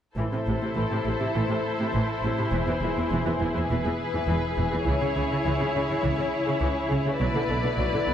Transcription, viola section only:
0.18 0.25 E3 soft
0.18 4.83 E4 soft
0.33 0.39 C3 soft
0.48 0.54 C3 soft
0.62 0.68 C3 soft
0.76 0.82 E3 soft
0.92 0.98 C3 soft
1.07 1.13 C3 soft
1.21 1.27 C3 soft
1.35 1.41 E3 soft
1.50 1.56 C3 soft
1.80 1.86 C3 soft
1.95 2.01 E3 soft
2.25 2.31 C3 soft
2.39 2.45 C3 soft
2.53 2.59 E3 soft
2.68 2.74 E3 soft
2.83 2.89 E3 soft
2.98 3.04 E3 soft
3.12 3.18 E3 soft
3.26 3.32 E3 soft
3.40 3.46 E3 soft
3.55 3.61 E3 soft
3.70 3.76 E3 soft
3.86 3.92 E3 soft
4.15 4.20 E3 soft
4.28 4.34 E3 soft
4.58 4.64 E3 soft
4.72 4.78 E3 soft
4.85 4.91 E3 soft
4.85 8.14 E4 soft
5.02 5.08 C#3 soft
5.16 5.22 C#3 soft
5.30 5.36 C#3 soft
5.46 5.51 E3 soft
5.60 5.66 C#3 soft
5.75 5.81 C#3 soft
5.89 5.95 C#3 soft
6.03 6.09 E3 soft
6.18 6.24 C#3 soft
6.47 6.53 C#3 soft
6.61 6.67 E3 soft
6.91 6.96 C#3 soft
7.07 7.12 C#3 soft
7.20 7.26 F#3 medium
7.36 7.41 D3 soft
7.50 7.56 D3 soft
7.64 7.70 D3 soft
7.78 7.84 F#3 soft
7.95 8.00 D3 soft
8.07 8.13 D3 soft

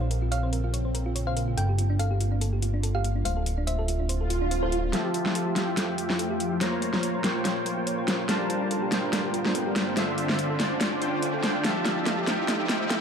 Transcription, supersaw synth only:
4.93 5.54 F3 loud
4.93 5.54 F4 medium
4.93 5.54 G4 medium
4.93 5.54 E5 medium
4.93 5.54 A5 loud
5.56 6.59 F3 medium
5.56 6.59 F4 medium
5.56 6.59 G4 medium
5.56 6.59 E5 medium
5.56 6.59 G5 medium
6.61 7.22 A#3 medium
6.61 7.22 F4 medium
6.61 7.22 C5 medium
6.61 7.22 C#5 medium
6.61 7.22 A#5 loud
7.24 8.27 A#3 medium
7.24 8.27 F4 medium
7.24 8.27 C5 medium
7.24 8.27 C#5 medium
7.24 8.27 G5 medium
8.29 8.89 G3 loud
8.29 8.89 D4 medium
8.29 8.89 F4 medium
8.29 8.89 A#4 medium
8.29 8.89 C5 medium
8.29 8.89 A5 loud
8.92 9.94 G3 medium
8.92 9.94 D4 medium
8.92 9.94 F4 medium
8.92 9.94 A#4 medium
8.92 9.94 C5 medium
8.92 9.94 G5 medium
9.97 10.57 D3 medium
9.97 10.57 D4 medium
9.97 10.57 F4 medium
9.97 10.57 C5 medium
9.97 10.57 E5 loud
10.59 11.00 D3 medium
10.59 11.00 D4 medium
10.59 11.00 F4 medium
10.59 11.00 C5 medium
10.59 11.00 D5 medium
11.01 11.41 D3 medium
11.01 11.41 D4 medium
11.01 11.41 F4 medium
11.01 11.41 C5 medium
11.01 11.41 G5 loud
11.43 11.62 D3 loud
11.43 11.62 D4 medium
11.43 11.62 F4 medium
11.43 11.62 C5 medium
11.43 11.62 G5 loud
11.64 12.25 F3 loud
11.64 12.25 F4 medium
11.64 12.25 G4 medium
11.64 12.25 E5 medium
11.64 12.25 A5 loud
12.27 13.01 F3 medium
12.27 13.01 F4 medium
12.27 13.01 G4 medium
12.27 13.01 E5 medium
12.27 13.01 G5 medium

